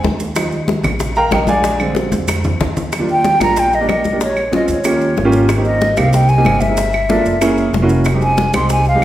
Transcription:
0.03 upright bass D#2, high bongo, low bongo, high conga, maracas
0.20 high bongo, high conga, maracas
0.35 grand piano F3 G3 D#4, high bongo, high conga, claves, maracas
0.52 high conga, maracas
0.68 high bongo, high conga, maracas
0.83 upright bass A#1, low conga, claves, maracas
1.00 high bongo, high conga, low conga, maracas
1.15 grand piano A#4 F5 G5 A#5, high conga, maracas
1.31 upright bass A#1, grand piano G4 A#4 D#5 G5, high bongo, low bongo, high conga, claves, maracas
1.47 grand piano G#4 D5 F5 G#5, high conga, maracas
1.64 high bongo, high conga, maracas
1.79 grand piano D3 G#3 C4, high bongo, high conga, claves, maracas
1.95 high bongo, high conga, maracas
2.12 upright bass F2, high bongo, high conga, maracas
2.28 high bongo, high conga, claves, maracas
2.44 low conga, maracas
2.60 upright bass D#2, high bongo, low bongo, low conga, maracas
2.77 high bongo, low conga, maracas
2.92 high bongo, high conga, claves, maracas
2.99 grand piano G3 A#3 D4 F4
3.09 flute G5, high bongo, high conga, maracas
3.24 high bongo, high conga, maracas
3.40 upright bass A#1, grand piano G3 A#3 D4 F4, flute A#5, high conga, claves, maracas
3.56 flute G5, high bongo, high conga, maracas
3.73 flute D#5, high bongo, high conga, maracas
3.81 grand piano G3 A#3 D4 G4
3.88 upright bass A#1, flute D#5, high bongo, low bongo, high conga, claves, maracas
4.04 high bongo, high conga, maracas
4.12 grand piano G3 A#3 D4 G4
4.21 flute C#5, high bongo, high conga, maracas
4.37 high bongo, high conga, claves, maracas
4.51 grand piano G#3 C4 C#4 F4, flute D#5, high bongo, high conga, maracas
4.68 upright bass D#2, flute C#5, high conga, maracas
4.84 grand piano A#3 C#4 F4 G4, high bongo, high conga, claves, maracas
5.01 high bongo, high conga, maracas
5.17 upright bass G#1, high bongo, low bongo, high conga, maracas
5.25 grand piano A#3 C#4 F4 G4
5.32 high bongo, high conga, maracas
5.49 high bongo, high conga, claves, maracas
5.57 grand piano A#3 C4 D#4 G4
5.65 flute D#5, high bongo, high conga, maracas
5.81 high bongo, high conga, maracas
5.97 upright bass C2, grand piano A#3 C4 D#4 G4, flute F5, high conga, claves, maracas
6.13 flute G5, high bongo, high conga, maracas
6.29 flute G#5, high bongo, high conga, maracas
6.38 grand piano A#3 C4 D#4 G4
6.45 upright bass G1, high bongo, low bongo, high conga, claves, maracas
6.60 flute E5, high bongo, high conga, maracas
6.69 grand piano A#3 C4 D#4 G#4
6.77 high bongo, high conga, maracas
6.93 high bongo, high conga, claves, maracas
7.09 grand piano A#3 D4 F4 A4, high bongo, high conga, maracas
7.25 upright bass F#1, high conga, maracas
7.41 grand piano A#3 C#4 E4 G#4, high bongo, high conga, claves, maracas
7.58 high bongo, high conga, maracas
7.73 upright bass F1, high bongo, low bongo, high conga, maracas
7.82 grand piano A#3 C#4 E4 F#4
7.89 high bongo, high conga, maracas
8.05 high bongo, high conga, claves, maracas
8.14 grand piano G#3 C4 D#4 G4
8.22 flute G#5, high bongo, high conga, maracas
8.37 high bongo, high conga, maracas
8.53 upright bass C2, grand piano G#3 C4 D#4 G4, flute C6, high conga, claves, maracas
8.69 flute G#5, high bongo, high conga, maracas
8.85 flute F5, high bongo, high conga, maracas
8.95 grand piano G#3 C4 D#4 G4

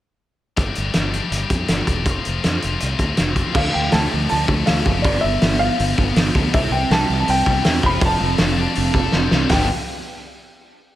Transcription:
0.57 fingered electric bass G1, distorted electric guitar G3 A3 D4 G4, kick, closed hi-hat
0.75 fingered electric bass G1, closed hi-hat
0.94 fingered electric bass G1, distorted electric guitar G3 A3 D4 G4, snare, closed hi-hat
1.13 distorted electric guitar A3 D4 G4, closed hi-hat
1.31 fingered electric bass G1, closed hi-hat
1.50 fingered electric bass F2, kick, closed hi-hat
1.67 fingered electric bass G1, distorted electric guitar G3 A3 D4 G4, snare, closed hi-hat
1.87 fingered electric bass E1, distorted electric guitar A3 D4 G4, kick, closed hi-hat
2.05 fingered electric bass F1, distorted electric guitar F3 A3 C4 F4, kick, closed hi-hat
2.25 fingered electric bass F1, closed hi-hat
2.43 fingered electric bass F2, distorted electric guitar F3 A3 C4 F4, snare, closed hi-hat
2.60 fingered electric bass F1, distorted electric guitar A3 C4 F4, snare, closed hi-hat
2.80 fingered electric bass C2, closed hi-hat
2.99 fingered electric bass D2, kick, closed hi-hat
3.16 fingered electric bass F1, distorted electric guitar F3 A3 C4 F4, snare, closed hi-hat
3.35 distorted electric guitar A3 C4 F4, kick, closed hi-hat
3.53 fingered electric bass D2, distorted electric guitar D3, overdriven electric guitar F3 A3 D4, upright piano F5, kick, crash
3.72 fingered electric bass D2, distorted electric guitar D3, overdriven electric guitar F3 A3, upright piano G5
3.89 overdriven electric guitar F3 A3, distorted electric guitar A3, upright piano A5, snare, open hi-hat
3.94 fingered electric bass D2
4.09 overdriven electric guitar F3 A3, distorted electric guitar F3
4.14 fingered electric bass D2
4.29 fingered electric bass D2, distorted electric guitar D3, overdriven electric guitar F3 A3, upright piano A5, open hi-hat
4.48 fingered electric bass D2, overdriven electric guitar F3 A3, distorted electric guitar A3, kick
4.66 fingered electric bass D2, overdriven electric guitar F3 A3, distorted electric guitar E4, upright piano F5, snare, open hi-hat
4.85 fingered electric bass F#1, overdriven electric guitar F3 A3, distorted electric guitar A3, kick
5.02 fingered electric bass G1, distorted electric guitar G2, overdriven electric guitar F3 B3 D4, upright piano D5, kick, open hi-hat
5.21 fingered electric bass G1, distorted electric guitar D3, overdriven electric guitar F3 B3, upright piano E5
5.42 fingered electric bass G1, overdriven electric guitar F3 B3, distorted electric guitar B3, snare, open hi-hat
5.59 distorted electric guitar F3, overdriven electric guitar F3 B3, upright piano F5
5.78 fingered electric bass G1, distorted electric guitar D3, overdriven electric guitar F3 B3, open hi-hat
5.96 fingered electric bass G1, overdriven electric guitar F3 B3, distorted electric guitar B3, kick
6.15 fingered electric bass G1, overdriven electric guitar F3 B3, distorted electric guitar D4, snare, open hi-hat
6.34 fingered electric bass D2, overdriven electric guitar F3 B3, distorted electric guitar B3, kick, snare
6.53 fingered electric bass C2, distorted electric guitar C3, overdriven electric guitar G3 C4 E4, string machine B4 E5, upright piano E5, kick, open hi-hat
6.70 fingered electric bass C2, distorted electric guitar C3, overdriven electric guitar G3 C4, upright piano G5
6.90 fingered electric bass C2, overdriven electric guitar G3 C4, distorted electric guitar B3, upright piano A5, snare, open hi-hat
7.08 fingered electric bass C2, distorted electric guitar G3, overdriven electric guitar G3 C4
7.20 upright piano A5
7.27 fingered electric bass C2, distorted electric guitar C3, overdriven electric guitar G3 C4, upright piano G5, open hi-hat
7.45 fingered electric bass C2, overdriven electric guitar G3 C4, distorted electric guitar B3, kick
7.64 fingered electric bass E2, overdriven electric guitar G3 C4, distorted electric guitar E4, snare, open hi-hat
7.82 fingered electric bass F1, overdriven electric guitar F3 C4 F4, distorted electric guitar F3, string machine D4 A4, upright piano B5, kick
7.86 string machine F5
8.00 fingered electric bass F1, distorted electric guitar F3, overdriven electric guitar F3 C4, kick, open hi-hat
8.05 upright piano A5
8.18 fingered electric bass F1, overdriven electric guitar F3 C4, distorted electric guitar A3
8.38 fingered electric bass F1, overdriven electric guitar F3 C4, distorted electric guitar A4, snare, open hi-hat
8.56 overdriven electric guitar F3 C4, distorted electric guitar D4
8.75 fingered electric bass F1, overdriven electric guitar F3 C4, distorted electric guitar A3, open hi-hat
8.94 fingered electric bass F1, overdriven electric guitar F3 C4, distorted electric guitar A4, kick
9.12 fingered electric bass F1, overdriven electric guitar F3 C4, distorted electric guitar C5, snare
9.31 fingered electric bass C2, overdriven electric guitar F3 C4, distorted electric guitar A4, snare
9.49 fingered electric bass G1, distorted electric guitar G2 D3 G3 B3 D4, overdriven electric guitar F3 B3, string machine B3 G4 F5, upright piano G5, snare, floor tom, open hi-hat
9.53 overdriven electric guitar D4

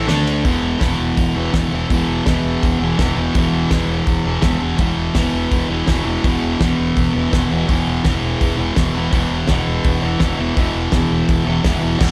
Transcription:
0.07 fingered electric bass D2, distorted electric guitar D3 A3 D4, snare, ride
0.27 ride
0.43 fingered electric bass E1, distorted electric guitar E2 B2 E3, kick, open hi-hat
0.62 fingered electric bass E1
0.79 fingered electric bass E1, distorted electric guitar E2 B2 E3, kick, snare, open hi-hat
1.00 fingered electric bass E1
1.17 fingered electric bass E1, kick, open hi-hat
1.36 fingered electric bass E1, distorted electric guitar B2 E3
1.52 fingered electric bass E1, distorted electric guitar E2 B2 E3, kick, snare, open hi-hat
1.72 fingered electric bass E1, distorted electric guitar B2 E3
1.90 fingered electric bass E1, distorted electric guitar E2 B2 E3, kick, open hi-hat
2.07 fingered electric bass E1
2.26 fingered electric bass E1, distorted electric guitar E2 B2 E3, kick, snare, open hi-hat
2.44 fingered electric bass E1
2.63 fingered electric bass E1, kick, open hi-hat
2.79 fingered electric bass E1, distorted electric guitar E3
2.84 distorted electric guitar B2
2.98 fingered electric bass E1, distorted electric guitar E2 B2 E3, kick, snare, open hi-hat
3.16 fingered electric bass E1, distorted electric guitar B2 E3
3.35 fingered electric bass E1, distorted electric guitar E2 B2 E3, kick, open hi-hat
3.52 fingered electric bass E1
3.71 fingered electric bass E1, distorted electric guitar E2 B2 E3, kick, snare, open hi-hat
3.88 fingered electric bass E1
4.07 fingered electric bass E1, kick, open hi-hat
4.24 fingered electric bass E1, distorted electric guitar B2 E3
4.42 fingered electric bass E1, distorted electric guitar E2 B2 E3, kick, snare, open hi-hat
4.60 fingered electric bass E1, distorted electric guitar B2 E3
4.78 fingered electric bass E1, distorted electric guitar E2 B2 E3, kick, open hi-hat
4.97 fingered electric bass E1
5.15 fingered electric bass E1, distorted electric guitar E2 B2 E3, kick, snare, open hi-hat
5.33 fingered electric bass E1
5.52 fingered electric bass E1, kick, open hi-hat
5.69 fingered electric bass E1, distorted electric guitar B2 E3
5.87 fingered electric bass E1, distorted electric guitar E2 B2 E3, kick, snare, open hi-hat
6.05 fingered electric bass E1, distorted electric guitar B2 E3
6.23 fingered electric bass E1, distorted electric guitar E2 B2 E3, kick, open hi-hat
6.43 fingered electric bass E1
6.60 fingered electric bass E1, distorted electric guitar E2 B2 E3, kick, snare, open hi-hat
6.79 fingered electric bass E1
6.97 fingered electric bass E1, kick, open hi-hat
7.14 fingered electric bass E1, distorted electric guitar B2 E3
7.31 fingered electric bass E1, distorted electric guitar E2 B2 E3, kick, snare, open hi-hat
7.51 fingered electric bass E1, distorted electric guitar B2 E3
7.67 fingered electric bass E1, distorted electric guitar E2 B2 E3, kick, open hi-hat
7.87 fingered electric bass E1
8.04 fingered electric bass E1, distorted electric guitar E2 B2 E3, kick, snare, open hi-hat
8.22 fingered electric bass E1
8.41 fingered electric bass E1, kick, open hi-hat
8.57 fingered electric bass E1, distorted electric guitar B2 E3
8.76 fingered electric bass E1, distorted electric guitar E2 B2 E3, kick, snare, open hi-hat
8.94 fingered electric bass E1, distorted electric guitar B2 E3
9.12 fingered electric bass E1, distorted electric guitar E2 B2 E3, kick, open hi-hat
9.31 fingered electric bass E1
9.48 fingered electric bass E1, distorted electric guitar E2 B2, kick, snare, open hi-hat
9.52 distorted electric guitar E3
9.67 fingered electric bass E1
9.84 fingered electric bass E1, kick, open hi-hat
10.02 fingered electric bass E1, distorted electric guitar B2 E3
10.19 fingered electric bass E1, distorted electric guitar E2 B2 E3, kick, snare, open hi-hat
10.37 fingered electric bass E1, distorted electric guitar B2 E3
10.56 fingered electric bass E1, distorted electric guitar E2 B2 E3, kick, open hi-hat
10.75 fingered electric bass E1
10.92 fingered electric bass E1, distorted electric guitar E2 B2 E3, kick, snare, open hi-hat
11.11 fingered electric bass E1
11.29 fingered electric bass E1, kick, open hi-hat
11.45 fingered electric bass E1, distorted electric guitar B2 E3
11.63 fingered electric bass E1, distorted electric guitar E2 B2 E3, kick, snare, open hi-hat
11.80 fingered electric bass E1, distorted electric guitar B2 E3
11.99 fingered electric bass E1, distorted electric guitar E2 B2 E3, kick, snare, crash

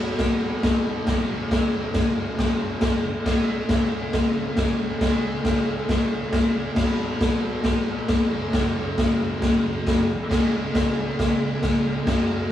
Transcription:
Already playing: distorted electric guitar B2 F#3 B3
0.19 kick, snare, crash
0.63 kick, snare, crash
1.07 kick, snare, crash
1.29 distorted electric guitar F#2 C#3
1.33 distorted electric guitar F#3
1.51 kick, snare, crash
1.94 kick, snare, crash
2.38 kick, snare, crash
2.81 kick, snare, crash
3.26 distorted electric guitar C#3 G#3, kick, snare, crash
3.30 distorted electric guitar C#4
3.69 kick, snare, crash
4.13 kick, snare, crash
4.57 kick, snare, crash
5.00 distorted electric guitar C#3 G#3 C#4, kick, snare, crash
5.45 kick, snare, crash
5.89 kick, snare, crash
6.32 kick, snare, crash
6.76 distorted electric guitar B2 F#3, kick, snare, crash
6.80 distorted electric guitar B3
7.21 kick, snare, crash
7.64 kick, snare, crash
8.08 kick, snare, crash
8.29 distorted electric guitar F#2 C#3
8.34 distorted electric guitar F#3
8.53 kick, snare, crash
8.98 kick, snare, crash
9.42 kick, snare, crash
9.87 kick, snare, crash
10.29 distorted electric guitar C#3 G#3, kick, snare, crash
10.34 distorted electric guitar C#4
10.75 kick, snare, crash
11.19 kick, snare, crash
11.63 kick, snare, crash
12.06 distorted electric guitar F#2 C#3, kick, snare, crash
12.11 distorted electric guitar F#3

